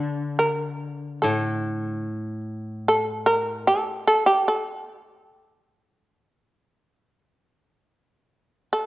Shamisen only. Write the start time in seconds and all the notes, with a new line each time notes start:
Already playing: D5
0.39 A#4
1.22 A4
1.83 G#4
1.98 G4
2.88 A4
3.26 A#4
3.67 A4
4.08 A4
4.27 G4
4.48 A4
8.73 A4